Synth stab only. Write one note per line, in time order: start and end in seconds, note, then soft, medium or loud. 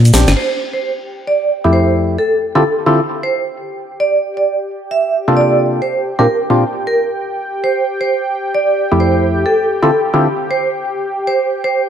0.14 0.33 C4 medium
0.14 0.33 D4 medium
0.14 0.33 G4 loud
1.64 2.17 F2 medium
1.64 2.17 A3 medium
1.64 2.17 E4 medium
1.64 2.17 G4 medium
2.55 2.63 D3 medium
2.55 2.64 C4 medium
2.55 2.64 E4 medium
2.55 2.64 F4 medium
2.55 2.64 G4 medium
2.55 2.64 A4 medium
2.86 3.00 D3 medium
2.86 3.00 C4 medium
2.86 3.00 E4 medium
2.86 3.00 F4 medium
2.86 3.00 G4 medium
2.86 3.00 A4 medium
5.28 5.81 C3 medium
5.28 5.81 A#3 medium
5.28 5.81 D4 medium
5.28 5.81 F4 medium
5.28 5.81 G4 medium
5.28 5.81 A4 medium
6.19 6.27 A#2 medium
6.19 6.27 C4 medium
6.19 6.27 D4 medium
6.19 6.27 F4 medium
6.19 6.27 G4 medium
6.50 6.64 A#2 medium
6.50 6.64 C4 medium
6.50 6.64 D4 medium
6.50 6.64 F4 medium
6.50 6.64 G4 medium
8.92 9.45 F2 medium
8.92 9.45 A3 medium
8.92 9.45 E4 medium
8.92 9.45 G4 medium
9.82 9.91 D3 medium
9.82 9.91 C4 medium
9.82 9.91 E4 medium
9.82 9.91 F4 medium
9.82 9.91 G4 medium
9.82 9.91 A4 medium
10.14 10.28 D3 medium
10.14 10.28 C4 medium
10.14 10.28 E4 medium
10.14 10.28 F4 medium
10.14 10.28 G4 medium
10.14 10.28 A4 medium